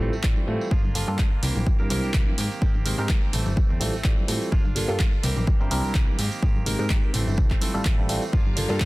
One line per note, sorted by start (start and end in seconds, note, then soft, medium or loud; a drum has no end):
0.00 0.10 A1 medium
0.00 0.12 E3 medium
0.00 0.14 G3 medium
0.00 0.13 A3 medium
0.00 0.14 C4 medium
0.00 0.11 C4 medium
0.00 0.14 E4 medium
0.00 0.14 F4 medium
0.00 0.14 A4 medium
0.00 high conga medium
0.12 0.22 A1 soft
0.12 0.23 A3 soft
0.12 0.23 C4 medium
0.12 tambourine medium
0.23 0.34 A1 medium
0.23 0.45 E3 medium
0.23 0.45 G3 medium
0.23 0.45 C4 medium
0.23 0.45 E4 medium
0.23 0.45 F4 medium
0.23 0.45 D5 medium
0.23 kick loud
0.23 clap loud
0.36 tambourine soft
0.36 high conga medium
0.47 0.58 A2 medium
0.47 0.70 E3 medium
0.47 0.69 G3 medium
0.47 0.71 A3 medium
0.47 0.69 C4 medium
0.47 0.72 C4 medium
0.47 0.69 E4 medium
0.47 0.69 F4 medium
0.47 0.69 A4 medium
0.61 tambourine medium
0.71 1.04 G1 medium
0.71 0.84 F3 medium
0.71 0.84 A#3 medium
0.71 0.84 D4 medium
0.71 0.82 F4 medium
0.71 kick loud
0.83 0.94 A#3 soft
0.83 0.95 D4 soft
0.83 0.95 F4 medium
0.83 tambourine soft
0.83 high conga medium
0.94 1.08 F3 medium
0.94 1.06 G3 medium
0.94 1.06 A#3 medium
0.94 1.08 A#3 medium
0.94 1.06 D4 medium
0.94 1.08 D4 medium
0.94 1.06 F4 medium
0.94 1.06 A4 loud
0.94 open hi-hat loud
0.94 low conga medium
1.07 1.17 G2 loud
1.07 1.20 G3 medium
1.07 1.20 A#3 medium
1.07 1.18 A#3 soft
1.07 1.20 D4 medium
1.07 1.19 D4 medium
1.07 1.18 F4 medium
1.07 1.20 F4 medium
1.07 1.21 A4 loud
1.07 tambourine medium
1.18 1.29 G2 medium
1.18 1.32 F3 medium
1.18 1.32 A#3 medium
1.18 1.31 D4 medium
1.18 1.30 F4 medium
1.18 kick loud
1.18 clap loud
1.18 tambourine soft
1.18 high conga medium
1.31 1.42 A#3 soft
1.31 1.43 D4 soft
1.31 1.42 F4 medium
1.31 tambourine soft
1.42 1.53 C2 loud
1.42 1.79 E3 medium
1.42 1.76 G3 medium
1.42 1.80 A#3 medium
1.42 1.76 C4 medium
1.42 1.79 C4 medium
1.42 1.76 D4 medium
1.42 1.76 E4 medium
1.42 1.77 G4 medium
1.42 1.76 A#4 medium
1.42 open hi-hat medium
1.42 low conga medium
1.55 1.64 A#1 medium
1.55 tambourine medium
1.55 high conga medium
1.66 kick loud
1.66 tambourine medium
1.66 low conga medium
1.78 1.88 G2 medium
1.78 1.88 G3 medium
1.78 1.89 A#3 soft
1.78 1.88 C4 medium
1.78 1.90 C4 medium
1.78 1.89 D4 medium
1.78 1.89 E4 medium
1.78 1.90 G4 medium
1.78 1.89 A#4 loud
1.78 tambourine soft
1.89 2.01 C2 medium
1.89 2.03 E3 medium
1.89 2.36 G3 medium
1.89 2.03 A#3 medium
1.89 2.36 C4 medium
1.89 2.03 C4 medium
1.89 2.36 D4 medium
1.89 2.37 E4 medium
1.89 2.01 G4 medium
1.89 2.37 A#4 medium
1.89 open hi-hat loud
1.89 high conga medium
2.02 2.13 A#3 soft
2.02 2.14 C4 medium
2.02 2.14 G4 medium
2.02 tambourine medium
2.13 2.25 C2 medium
2.13 2.37 E3 medium
2.13 kick loud
2.13 clap loud
2.27 tambourine soft
2.27 high conga medium
2.37 2.49 G#2 medium
2.37 2.60 D#3 medium
2.37 2.61 A#3 medium
2.37 2.61 C4 medium
2.37 2.62 G4 medium
2.37 open hi-hat loud
2.51 tambourine medium
2.61 2.95 G#1 medium
2.61 2.74 D#3 medium
2.61 2.75 A#3 medium
2.61 2.75 C4 medium
2.61 2.73 G4 loud
2.61 kick loud
2.74 2.85 A#3 soft
2.74 2.86 C4 soft
2.74 2.85 G4 medium
2.74 tambourine soft
2.74 high conga medium
2.85 2.98 D#3 medium
2.85 2.96 G#3 medium
2.85 2.99 A#3 medium
2.85 2.96 C4 medium
2.85 2.98 C4 medium
2.85 2.96 D#4 medium
2.85 2.97 G4 medium
2.85 2.97 A#4 loud
2.85 open hi-hat medium
2.85 low conga medium
2.98 3.07 G#2 loud
2.98 3.30 G#3 medium
2.98 3.09 A#3 soft
2.98 3.30 C4 medium
2.98 3.09 C4 medium
2.98 3.31 D#4 medium
2.98 3.09 G4 medium
2.98 3.31 G4 medium
2.98 3.31 A#4 medium
2.98 tambourine medium
3.09 3.20 G#2 medium
3.09 3.22 D#3 medium
3.09 kick loud
3.09 clap loud
3.09 tambourine medium
3.09 high conga medium
3.21 3.34 A#3 soft
3.21 3.34 C4 medium
3.21 3.33 G4 medium
3.21 tambourine soft
3.33 3.44 A1 medium
3.33 3.70 E3 medium
3.33 3.78 G3 medium
3.33 3.70 A3 medium
3.33 3.78 C4 medium
3.33 3.68 C4 medium
3.33 3.78 E4 medium
3.33 3.78 A4 medium
3.33 open hi-hat loud
3.33 low conga medium
3.46 3.55 G1 medium
3.46 tambourine medium
3.46 high conga medium
3.56 kick loud
3.56 tambourine medium
3.56 low conga medium
3.69 3.79 E2 medium
3.69 3.80 A3 soft
3.69 3.80 C4 medium
3.69 tambourine soft
3.80 3.91 A1 medium
3.80 3.93 E3 medium
3.80 3.95 G3 medium
3.80 3.94 A3 medium
3.80 3.95 C4 medium
3.80 3.92 C4 medium
3.80 3.95 E4 medium
3.80 3.95 F4 medium
3.80 3.95 A4 medium
3.80 open hi-hat loud
3.80 high conga medium
3.93 4.04 A3 soft
3.93 4.04 C4 medium
3.93 tambourine medium
4.04 4.15 A1 medium
4.04 4.26 E3 medium
4.04 4.25 G3 medium
4.04 4.28 A3 medium
4.04 4.26 C4 medium
4.04 4.29 C4 medium
4.04 4.26 E4 medium
4.04 4.26 F4 medium
4.04 4.26 D5 medium
4.04 kick loud
4.04 clap loud
4.17 tambourine soft
4.17 high conga medium
4.28 4.39 A2 medium
4.28 4.52 E3 medium
4.28 4.50 G3 medium
4.28 4.51 A3 medium
4.28 4.50 C4 medium
4.28 4.52 C4 medium
4.28 4.50 E4 medium
4.28 4.50 F4 medium
4.28 4.50 A4 medium
4.28 open hi-hat medium
4.42 tambourine medium
4.52 4.85 G1 loud
4.52 4.65 A#3 medium
4.52 4.65 D4 medium
4.52 4.63 F4 medium
4.52 kick loud
4.64 4.76 D4 soft
4.64 4.76 F4 soft
4.64 tambourine soft
4.64 high conga medium
4.75 4.87 G3 medium
4.75 4.89 A#3 medium
4.75 4.87 A#3 medium
4.75 4.87 D4 medium
4.75 4.89 D4 medium
4.75 4.87 F4 medium
4.75 4.87 A4 loud
4.75 open hi-hat medium
4.75 low conga medium
4.88 4.98 G2 loud
4.88 5.01 G3 medium
4.88 5.01 A#3 medium
4.88 5.01 D4 medium
4.88 4.99 D4 soft
4.88 4.99 F4 medium
4.88 5.01 F4 medium
4.88 5.01 A4 loud
4.88 tambourine medium
4.99 5.10 G2 medium
4.99 5.12 A#3 medium
4.99 5.13 D4 medium
4.99 5.11 F4 medium
4.99 kick loud
4.99 clap loud
4.99 tambourine medium
4.99 high conga medium
5.12 5.24 D4 soft
5.12 5.23 F4 medium
5.12 tambourine soft
5.23 5.34 C2 loud
5.23 5.60 E3 medium
5.23 5.57 G3 medium
5.23 5.60 A#3 medium
5.23 5.57 C4 medium
5.23 5.60 C4 medium
5.23 5.57 D4 medium
5.23 5.57 E4 medium
5.23 5.58 G4 medium
5.23 5.57 A#4 medium
5.23 open hi-hat medium
5.23 low conga medium
5.36 5.45 A#1 medium
5.36 tambourine medium
5.36 high conga medium
5.47 kick loud
5.47 tambourine medium
5.47 low conga medium
5.59 5.69 G2 medium
5.59 5.69 G3 medium
5.59 5.70 A#3 soft
5.59 5.69 C4 medium
5.59 5.71 C4 soft
5.59 5.70 D4 medium
5.59 5.70 E4 medium
5.59 5.71 G4 medium
5.59 5.70 A#4 medium
5.59 tambourine soft
5.70 5.82 C2 medium
5.70 5.84 E3 medium
5.70 6.17 G3 medium
5.70 5.84 A#3 medium
5.70 6.17 C4 medium
5.70 5.83 C4 medium
5.70 6.17 D4 medium
5.70 6.18 E4 medium
5.70 5.82 G4 medium
5.70 6.18 A#4 medium
5.70 open hi-hat loud
5.70 high conga medium
5.83 5.94 A#3 soft
5.83 5.95 C4 medium
5.83 5.94 G4 medium
5.83 tambourine medium
5.94 6.06 C2 medium
5.94 6.17 E3 medium
5.94 kick loud
5.94 clap loud
6.07 tambourine soft
6.07 high conga medium
6.18 6.29 G#2 medium
6.18 6.41 D#3 medium
6.18 6.42 A#3 medium
6.18 6.42 C4 medium
6.18 6.43 G4 medium
6.18 open hi-hat medium
6.32 tambourine medium
6.42 6.76 G#1 loud
6.42 6.66 C4 medium
6.42 kick loud
6.55 tambourine soft
6.55 high conga medium
6.65 6.79 D#3 medium
6.65 6.77 G#3 medium
6.65 6.79 A#3 medium
6.65 6.77 C4 medium
6.65 6.79 C4 medium
6.65 6.77 D#4 medium
6.65 6.77 G4 medium
6.65 6.78 A#4 loud
6.65 open hi-hat medium
6.65 low conga medium
6.78 6.88 G#2 loud
6.78 7.11 G#3 medium
6.78 6.89 A#3 soft
6.78 7.11 C4 medium
6.78 6.90 C4 medium
6.78 7.11 D#4 medium
6.78 6.90 G4 medium
6.78 7.11 G4 medium
6.78 7.12 A#4 medium
6.78 tambourine medium
6.90 7.01 G#2 medium
6.90 7.03 D#3 medium
6.90 7.03 A#3 medium
6.90 kick loud
6.90 clap loud
6.90 tambourine medium
6.90 high conga medium
7.02 7.14 A#3 soft
7.02 7.14 C4 medium
7.02 7.14 G4 medium
7.02 tambourine soft
7.13 7.25 A1 loud
7.13 7.51 E3 medium
7.13 7.59 G3 medium
7.13 7.51 A3 medium
7.13 7.59 C4 medium
7.13 7.49 C4 medium
7.13 7.59 E4 medium
7.13 7.59 A4 medium
7.13 open hi-hat medium
7.13 low conga medium
7.27 7.36 G1 medium
7.27 tambourine medium
7.27 high conga medium
7.37 7.48 C2 loud
7.37 kick loud
7.37 tambourine medium
7.37 low conga medium
7.50 7.61 A3 soft
7.50 7.61 C4 medium
7.50 kick medium
7.50 clap soft
7.50 tambourine soft
7.61 7.74 E3 medium
7.61 7.72 G3 medium
7.61 7.75 A3 medium
7.61 7.72 C4 medium
7.61 7.73 C4 medium
7.61 7.73 E4 medium
7.61 7.73 F4 medium
7.61 7.73 A4 medium
7.61 open hi-hat loud
7.61 high conga medium
7.74 7.83 A1 soft
7.74 7.95 G3 medium
7.74 7.85 A3 soft
7.74 7.85 C4 medium
7.74 7.95 C4 medium
7.74 7.95 E4 medium
7.74 7.95 F4 medium
7.74 7.95 A4 medium
7.74 tambourine medium
7.85 8.18 A1 medium
7.85 8.07 E3 medium
7.85 8.09 A3 medium
7.85 kick loud
7.85 clap loud
7.98 8.07 G3 medium
7.98 8.07 C4 medium
7.98 8.07 E4 medium
7.98 8.08 F4 medium
7.98 8.08 A4 medium
7.98 tambourine soft
7.98 high conga medium
8.08 8.32 E3 medium
8.08 8.23 G3 medium
8.08 8.33 A3 medium
8.08 8.23 C4 medium
8.08 8.34 C4 medium
8.08 8.23 E4 medium
8.08 8.24 F4 medium
8.08 8.24 A4 medium
8.08 open hi-hat medium
8.22 tambourine medium
8.32 8.66 G1 loud
8.32 8.46 F3 medium
8.32 8.46 A#3 medium
8.32 8.46 D4 medium
8.32 8.44 F4 loud
8.32 8.85 G4 medium
8.32 8.85 F5 medium
8.32 8.85 A#5 medium
8.32 kick loud
8.32 tambourine medium
8.45 8.56 A#3 soft
8.45 8.57 D4 soft
8.45 8.56 F4 medium
8.45 tambourine soft
8.45 high conga medium
8.56 8.69 F3 medium
8.56 8.68 G3 medium
8.56 8.68 A#3 medium
8.56 8.70 A#3 medium
8.56 8.68 D4 medium
8.56 8.69 D4 medium
8.56 8.68 F4 medium
8.56 8.68 A4 medium
8.56 open hi-hat loud
8.56 low conga medium
8.69 8.79 G2 loud
8.69 8.82 G3 medium
8.69 8.82 A#3 medium
8.69 8.80 A#3 soft
8.69 8.82 D4 medium
8.69 8.80 D4 medium
8.69 8.80 F4 medium
8.69 8.82 F4 medium
8.69 8.82 A4 loud
8.69 tambourine medium
8.80 8.85 G2 medium
8.80 8.85 F3 medium
8.80 8.85 A#3 medium
8.80 8.85 D4 medium
8.80 kick loud
8.80 clap loud
8.80 tambourine medium
8.80 high conga medium